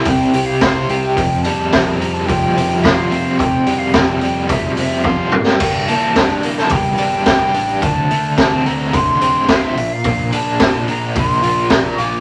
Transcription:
Already playing: C3 E4 G4 C5
0.05 C2 C4 G5, kick, open hi-hat
0.33 C2 G4, open hi-hat
0.46 F5
0.61 C5 F5, kick, snare, open hi-hat
0.89 C2 G4, open hi-hat
1.01 G5
1.16 F1 F2, kick, open hi-hat
1.42 G3 A5, open hi-hat
1.73 F2 C4, kick, snare, open hi-hat
1.99 G3 A#5, open hi-hat
2.13 A5
2.26 F1 F3 G5, kick, open hi-hat
2.54 F1 C4, open hi-hat
2.81 F4 F5, kick, open hi-hat
2.85 snare
3.10 F1 C4, open hi-hat
3.38 F1 F2 G5, kick, open hi-hat
3.66 G3, open hi-hat
3.79 F5
3.93 F2 C4 G5, kick, snare, open hi-hat
4.21 G3, open hi-hat
4.49 F1 F3 E5, kick, open hi-hat
4.76 F1 C4 E5, open hi-hat
5.03 F4 F5, kick, high tom
5.32 G1 G2, mid tom
5.45 G5, snare
5.60 G1 G2, kick, open hi-hat, crash
5.88 A#3 A5, open hi-hat
6.16 G2 D4, kick, snare, open hi-hat
6.43 A#3, open hi-hat
6.57 A5, snare
6.69 G1 G3 G5, kick, open hi-hat
6.98 G1 D4, open hi-hat
7.26 G4, kick, snare, open hi-hat
7.53 A1 D4, open hi-hat
7.81 D1 D2 A5, kick, open hi-hat
8.11 A3, open hi-hat
8.38 D2 C4 A5, kick, snare, open hi-hat
8.66 A3 A#5, open hi-hat
8.93 D1 D3 C6, kick, open hi-hat
9.20 D1 C4, open hi-hat
9.48 F4 E5, kick, snare, open hi-hat
9.57 F5
9.64 E5
9.75 A#1 A#2, open hi-hat
9.93 F5
10.04 A#1 A#2, kick, open hi-hat
10.32 D4 A5, open hi-hat
10.60 A#2 F4, kick, snare, open hi-hat
10.88 D4 A#5, open hi-hat
11.16 A#1 A#3 C6, kick, open hi-hat
11.42 A#1 F4, open hi-hat
11.70 A#4, kick, snare, open hi-hat
11.94 A#1 D6, open hi-hat
11.99 F4

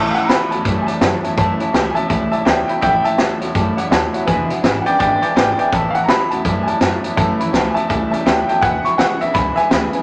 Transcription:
Already playing: A1 A2 E3 A3 C#4 E4
0.11 F5 F#5
0.15 A2 E3 A3 C#4 E4 C#5 E5 A5, muted upright bass stroke, closed hi-hat
0.24 A#5
0.28 E2 A2 E3 F#3 A3 C#4 E4 C#5 A5 B5, snare, closed hi-hat
0.51 E2 A2 F#3 A3 C#4 E4 C#5 E5 A5 B5, closed hi-hat
0.65 F#2 A2 E3 G3 A3 C#4 E4 C#5 E5 A5, kick, closed hi-hat
0.82 G#5
0.87 A2 G3 A3 C#4 E4 C#5 E5 A5, muted upright bass stroke, closed hi-hat
1.00 F#2 A2 E3 F#3 A3 C#4 E4 C#5 E5 A5, snare, closed hi-hat
1.23 A2 F#3 A3 C#4 E4 C#5 E5 A5, muted upright bass stroke, closed hi-hat
1.37 F#2 A2 E3 A3 C#4 E4 C#5 E5 A5, kick, closed hi-hat
1.59 A2 E3 A3 C#4 E4 C#5 E5 A5, muted upright bass stroke, closed hi-hat
1.73 C#2 A2 E3 F#3 A3 C#4 E4 C#5 E5, snare, closed hi-hat
1.91 G#5
1.95 A2 F#3 A3 C#4 E4 C#5 E5 A5, muted upright bass stroke, closed hi-hat
2.08 C#2 A2 E3 G3 A3 C#4 E4 C#5 E5 A5, kick, closed hi-hat
2.31 A2 G3 A3 C#4 E4 C#5 E5 A5, muted upright bass stroke, closed hi-hat
2.45 D2 A2 E3 F#3 A3 C#4 E4 C#5 E5 G5 A5, snare, closed hi-hat
2.68 A2 F#3 A3 C#4 E4 C#5 E5 G5 B5, muted upright bass stroke, closed hi-hat
2.81 A1 A2 E3 A3 C#4 E4 C#5 E5 F#5 G5, kick, closed hi-hat
3.04 A2 E3 A3 C#4 E4 C#5 E5 A5, muted upright bass stroke, closed hi-hat
3.18 E2 A2 E3 F#3 A3 C#4 E4 C#5 E5 A5, snare, closed hi-hat
3.40 E2 A2 F#3 A3 C#4 E4 C#5 E5 F#5, closed hi-hat
3.55 F#2 A2 E3 G3 A3 C#4 E4 C#5 E5 A5, kick, closed hi-hat
3.76 A2 G3 A3 C#4 E4 C#5 E5 F#5, muted upright bass stroke, closed hi-hat
3.91 D#2 A2 E3 F#3 A3 C#4 E4 C#5 E5 A5, snare, closed hi-hat
4.13 A2 F#3 A3 C#4 E4 C#5 E5 F#5, muted upright bass stroke, closed hi-hat
4.26 E1 E2 B2 E3 G#3 D4 E4 B4 E5 G#5, kick, closed hi-hat
4.49 E2 B2 E3 G#3 D4 E4 B4 E5 F#5, muted upright bass stroke, closed hi-hat
4.63 G#1 E2 C#3 E3 G#3 D4 E4 B4 E5 G#5, snare, closed hi-hat
4.82 F#5, muted upright bass stroke
4.86 E2 C#3 E3 G#3 D4 E4 B4 D5 E5 G5 G#5, closed hi-hat
4.99 G#1 E2 B2 D3 E3 G#3 D4 E4 B4 D5 E5 G5 G#5, kick, closed hi-hat
5.22 E2 D3 E3 G#3 D4 E4 B4 D5 E5 G5 G#5, muted upright bass stroke, closed hi-hat
5.36 G#1 E2 C#3 G#3 D4 E4 B4 D5 E5 G5 G#5, snare, closed hi-hat
5.58 E2 C#3 E3 G#3 D4 E4 B4 D5 E5 G5 G#5, muted upright bass stroke, closed hi-hat
5.72 A1 A2 E3 A3 C#4 E4 C#5 E5 A5, kick, closed hi-hat
5.90 F5
5.94 A2 E3 A3 C#4 E4 C#5 E5 F#5 A5, muted upright bass stroke, closed hi-hat
6.04 A#5
6.08 E2 A2 E3 F#3 A3 C#4 E4 C#5 E5 A5 B5, snare, closed hi-hat
6.30 E2 A2 F#3 A3 C#4 E4 C#5 E5 F#5 A5, closed hi-hat
6.44 F#2 A2 E3 G3 A3 C#4 E4 C#5 E5 A5, kick, closed hi-hat
6.63 E4 G#5
6.67 A2 G3 A3 C#4 C#5 E5 A5, muted upright bass stroke, closed hi-hat
6.80 F#2 A2 E3 F#3 A3 C#4 E4 C#5 E5 A5, snare, closed hi-hat
7.03 A2 F#3 A3 C#4 E4 C#5 E5 A5, muted upright bass stroke, closed hi-hat
7.16 F#2 A2 E3 A3 C#4 E4 C#5 E5 A5, kick, closed hi-hat
7.38 A2 E3 A3 C#4 E4 C#5 E5 B5, muted upright bass stroke, closed hi-hat
7.52 C#2 A2 E3 F#3 A3 C#4 E4 C#5 E5 A5, snare, closed hi-hat
7.70 E5 G#5
7.74 A2 F#3 A3 C#4 E4 C#5 E5 A5, muted upright bass stroke, closed hi-hat
7.88 C#2 A2 E3 G3 A3 C#4 E4 C#5 E5 G#5 A5, kick, closed hi-hat
8.11 A2 G3 A3 C#4 E4 C#5 E5 A5, muted upright bass stroke, closed hi-hat
8.25 D2 A2 E3 F#3 A3 C#4 E4 C#5 E5 G5 A5, snare, closed hi-hat
8.48 A2 F#3 A3 C#4 E4 C#5 E5 G5 A5, muted upright bass stroke, closed hi-hat
8.61 E1 E2 B2 E3 G#3 D4 E4 B4 E5 F#5 G#5, kick, closed hi-hat
8.84 E2 B2 E3 G#3 D4 E4 B4 E5 B5 C#6, muted upright bass stroke, closed hi-hat
8.98 B1 E2 C#3 E3 G#3 D4 E4 B4 F#5 G#5, snare, closed hi-hat
9.21 B1 E2 C#3 E3 G#3 D4 E4 B4 E5 F#5, closed hi-hat
9.34 C#2 E2 B2 D3 E3 G#3 D4 E4 B4 E5 G#5 B5, kick, closed hi-hat
9.56 E2 D3 E3 G#3 D4 E4 B4 E5 G#5, muted upright bass stroke, closed hi-hat
9.70 D2 E2 C#3 E3 G#3 D4 E4 B4 E5 B5, snare, closed hi-hat
9.93 E2 C#3 E3 G#3 D4 E4 B4 E5 G#5, closed hi-hat

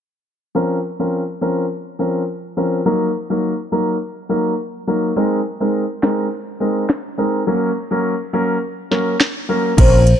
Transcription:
0.55 F3 C4 C#4 A#4
0.99 F3 C4 C#4 A#4
1.41 F3 C4 C#4 A#4
1.99 F3 C4 C#4 A#4
2.57 F3 C4 C#4 A#4
2.86 F#3 A#3 D#4 A#4
3.30 F#3 A#3 D#4 A#4
3.72 F#3 A#3 D#4 A#4
4.29 F#3 A#3 D#4 A#4
4.87 F#3 A#3 D#4 A#4
5.16 G#3 C4 D#4 A#4
5.60 G#3 C4 D#4 A#4
6.02 G#3 C4 D#4 A#4, finger snap, snare
6.60 G#3 C4 D#4 A#4
6.89 finger snap, snare
7.18 G#3 C4 D#4 A#4
7.47 F#3 A#3 C#4 A#4
7.91 F#3 A#3 C#4 A#4
8.33 F#3 A#3 C#4 A#4
8.91 F#3 A#3 C#4 A#4, snare
9.20 finger snap, snare
9.49 F#3 A#3 C#4 A#4
9.77 A#1 F3 C4 C#4 A#4 C5, kick, closed hi-hat, crash
10.07 closed hi-hat

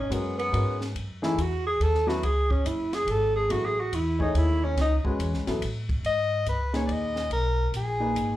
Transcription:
0.00 C#4
0.10 F#2 G#3 B3 C#4 F#4 A#4, hi-hat pedal, ride
0.38 B3, ride
0.53 G#2 G#3 C#4 F#4 A#4, ride
0.81 snare
0.95 F#2, ride
1.22 E3 A3 D#4 E4 G#4, snare
1.38 E2 F#4, hi-hat pedal, ride
1.67 G#4
1.80 D#2 A4, ride
1.95 snare
2.07 F#3 B3 E4 F#4 B4, snare
2.22 C#2 G#4, ride
2.51 C#4, kick
2.64 F#1 E4, hi-hat pedal, ride
2.93 G#4, snare, ride
3.07 G#1 A4, ride
3.36 G#4
3.49 A1 F#3 B3 E4 F#4 A4, ride
3.66 G#4
3.80 F#4
3.92 E2 E4, hi-hat pedal, ride
4.19 A3 D#4 G#4 C#5, kick
4.34 D#2 E4, ride
4.64 C#4
4.76 C#2, snare, ride
4.81 D#4
5.04 G#3 C#4 F#4 B4, kick
5.19 E2, hi-hat pedal, ride
5.33 C#2, snare
5.47 A1 F#3 B3 E4 A4, snare, ride
5.61 A2, hi-hat pedal, ride
5.89 kick, ride
6.03 G#2 D#5, ride
6.45 C#2 B4, hi-hat pedal, ride
6.73 A#2 D#4 G#4 B4 C#5, snare, ride
6.86 D#2 D5, ride
6.92 D#5
7.16 snare
7.30 B1 A#4, ride
7.72 A#1, hi-hat pedal, ride
7.77 G#4
8.00 A#2 D#4 G#4 B4
8.14 G#1, hi-hat pedal, ride

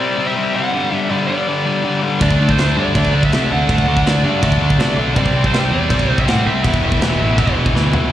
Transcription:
Already playing: D5
0.00 C3 G3 C4
0.17 C3 G3 C4
0.27 E5
0.35 C3 G3 C4
0.54 C3 G3 C4 F#5
0.73 G2 D3 G3
0.91 G2 D3 G3
1.10 G2 D3 G3 D5
1.28 G2 D3 G3 D5
1.47 G2 D3 G3
1.66 G2 D3 G3
1.83 G2 D3 G3
2.03 G2 D3 G3
2.21 D2 D3 A3 D4 D5, kick, crash
2.30 kick
2.39 D2 D3 A3 D4
2.49 C5, kick
2.58 D2 D3 A3 D4, snare, crash
2.77 G2 D3 A3 D4 D5
2.95 D2 D3 A3 D4, kick, crash
3.05 kick
3.14 D2 D3 A3 D4
3.23 E5, kick
3.32 C3 D3 A3 D4, snare, crash
3.51 D2 D3 A3 D4 F#5
3.69 D2 D3 A3 D4, kick, crash
3.78 kick
3.87 D2 D3 A3 D4
3.97 kick
4.06 D2 D3 A3 D4 D5, snare, crash
4.24 G2 D3 A3 D4
4.41 D2 D3 A3 D4 D5, kick, crash
4.52 kick
4.60 D2 D3 A3 D4
4.70 kick
4.78 C3 D3 A3 D4, snare, crash
4.97 B1 D3 A3 D4
5.15 C2 C3 G3 C4 D5, kick, crash
5.26 kick
5.34 C2 C3 G3 C4
5.44 C5, kick
5.52 C2 C3 G3 C4, snare, crash
5.70 E2 C3 G3 C4 D5
5.89 C2 C3 G3 C4, kick, crash
5.99 kick
6.08 C2 C3 G3 C4
6.18 E5, kick
6.26 A2 C3 G3 C4 F#5, snare, crash
6.45 C2 C3 G3 C4 E5
6.64 E1 E2 B2 E3, kick, crash
6.74 kick
6.83 E1 E2 B2 E3
6.92 kick
7.01 E1 E2 B2 E3, snare, crash
7.19 A1 E2 B2 E3
7.37 E1 E2 B2 E3, kick, crash
7.47 kick
7.55 E1 E2 B2 E3
7.66 kick
7.74 D2 E2 B2 E3, snare
7.93 C2 E2 B2 E3, floor tom

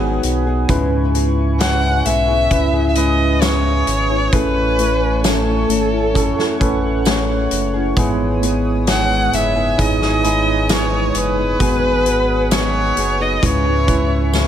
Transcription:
Already playing: G#1 G#2 D#3 F#3 B3 D#4 F#4 G#4 B4 F#5 G#5 D#6
0.23 B1, closed hi-hat
0.47 F#3 B3 D#4 G#4
0.68 C#2 G#2 C#3 G#3 B3 C#4 E4 G#4 B4 C#6, kick, closed hi-hat
1.14 G#3 B3 E4 G#4, closed hi-hat
1.59 C#3 G#3 B3 E4 G#4 F#5, snare, closed hi-hat, tambourine
2.05 B1 G#3 B3 E4 G#4 E5, closed hi-hat
2.28 B3 E4 G#4
2.50 C#2 C#4 E4 B4 D#6, kick, closed hi-hat
2.74 B3 E4 G#4
2.89 E5
2.95 G#3 B3 C#4 E4 G#4 B4 D#5, closed hi-hat
3.41 C#3 G#3 B3 E4 G#4 C#5, snare, closed hi-hat, tambourine
3.87 G#1, closed hi-hat
4.10 B3 E4 G#4
4.32 A1 A3 C#4 E4 G#4 A4 B4 C#5 G#5 C#6, kick, closed hi-hat
4.78 A3 C#4 E4 G#4, closed hi-hat
5.23 A3 C#4 E4 A4, snare, closed hi-hat, tambourine
5.68 G#1 A3 C#4 E4 G#4, closed hi-hat
5.93 C#4 E4
6.14 C#4 E4 A4 F#5, kick, closed hi-hat
6.37 C#4 E4 G#4, snare
6.59 A1 A3 C#4 E4 A4 B4, kick, closed hi-hat
7.05 A3 C#4 E4 G#4, snare, closed hi-hat, tambourine
7.51 F#1, closed hi-hat
7.74 C#4 E4 G#4
7.96 G#1 G#2 E3 G#3 B3 D#4 E4 G#4 B4 G#5 D#6, kick, closed hi-hat
8.42 G#3 B3 D#4 G#4, closed hi-hat
8.87 G#2 E3 G#3 B3 D#4 G#4 F#5, snare, closed hi-hat, tambourine
9.32 F#1 G#3 B3 D#4 G#4 E5, closed hi-hat
9.56 G#3 B3 D#4 G#4
9.78 G#1 D#4 E4 G#4 D#5, kick, closed hi-hat
10.01 G#3 B3 D#4 G#4, snare
10.23 G#3 B3 D#4 E4 G#4, closed hi-hat
10.69 G#2 E3 G#3 B3 D#4 G#4 C#5, snare, closed hi-hat, tambourine
11.14 F#1 B4, closed hi-hat
11.37 G#3 B3 D#4 G#4
11.59 G#1 G#2 D#3 F#3 B3 D#4 F#4 G#4 B4 F#5, kick, closed hi-hat
12.06 F#3 B3 D#4 G#4, closed hi-hat
12.51 G#2 D#3 F#3 B3 D#4 G#4 C#5, snare, closed hi-hat, tambourine
12.96 F#1 F#3 B3 D#4 G#4, closed hi-hat
13.19 F#3 B3 D#4 G#4 D#5
13.42 C#2 G#2 C#3 G#3 B3 C#4 E4 G#4 B4 C#5 E5 C#6, kick, closed hi-hat
13.65 B3 E4 G#4
13.87 G#3 B3 C#4 E4 G#4 B4, kick, closed hi-hat
14.33 C#3 G#3 B3 E4 G#4, snare, tambourine

